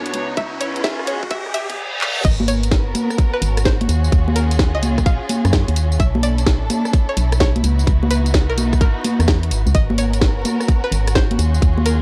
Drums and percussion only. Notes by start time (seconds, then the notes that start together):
0.06 closed hi-hat
0.14 open hi-hat
0.37 kick, closed hi-hat
0.61 open hi-hat
0.76 closed hi-hat
0.84 kick, snare
0.99 cross-stick
1.07 open hi-hat
1.23 kick
1.31 kick, closed hi-hat
1.46 cross-stick
1.54 open hi-hat
1.70 closed hi-hat
2.01 clap
2.25 kick, closed hi-hat, crash, tambourine
2.40 high conga
2.48 open hi-hat, tambourine
2.63 closed hi-hat, tambourine
2.71 kick, snare, tambourine
2.95 open hi-hat, tambourine, high conga
3.10 cross-stick, tambourine
3.18 kick, closed hi-hat, tambourine
3.42 open hi-hat, tambourine
3.57 cross-stick, closed hi-hat, tambourine
3.65 kick, snare
3.81 closed hi-hat, high conga
3.89 open hi-hat, tambourine
4.04 tambourine
4.12 kick, closed hi-hat, tambourine
4.28 high conga
4.36 open hi-hat, tambourine
4.51 closed hi-hat, tambourine
4.59 kick, snare
4.83 open hi-hat, tambourine, high conga
4.98 kick, cross-stick, tambourine
5.06 kick, closed hi-hat, tambourine
5.29 open hi-hat, tambourine, high conga
5.45 cross-stick, closed hi-hat, tambourine
5.53 kick, snare, tambourine
5.68 closed hi-hat
5.76 open hi-hat, tambourine
5.92 tambourine
6.00 kick, closed hi-hat, tambourine
6.15 high conga
6.23 open hi-hat, tambourine
6.38 closed hi-hat, tambourine
6.47 kick, snare, tambourine
6.70 open hi-hat, tambourine, high conga
6.85 cross-stick, tambourine
6.93 kick, closed hi-hat, tambourine
7.17 open hi-hat, tambourine
7.32 cross-stick, closed hi-hat, tambourine
7.40 kick, snare
7.56 closed hi-hat, high conga
7.64 open hi-hat, tambourine
7.79 tambourine
7.87 kick, closed hi-hat, tambourine
8.03 high conga
8.11 open hi-hat, tambourine
8.26 closed hi-hat, tambourine
8.34 kick, snare, tambourine
8.58 open hi-hat, tambourine, high conga
8.73 kick, cross-stick, tambourine
8.81 kick, closed hi-hat, tambourine
9.04 open hi-hat, tambourine, high conga
9.20 cross-stick, closed hi-hat, tambourine
9.28 kick, snare, tambourine
9.43 closed hi-hat
9.51 open hi-hat, tambourine
9.67 tambourine
9.75 kick, closed hi-hat, tambourine
9.90 high conga
9.98 open hi-hat, tambourine
10.14 closed hi-hat, tambourine
10.22 kick, snare, tambourine
10.45 open hi-hat, tambourine, high conga
10.60 cross-stick, tambourine
10.68 kick, closed hi-hat, tambourine
10.92 open hi-hat, tambourine
11.07 cross-stick, closed hi-hat, tambourine
11.15 kick, snare, tambourine
11.31 closed hi-hat, high conga
11.39 open hi-hat, tambourine
11.54 tambourine
11.62 kick, closed hi-hat, tambourine
11.78 high conga
11.86 open hi-hat, tambourine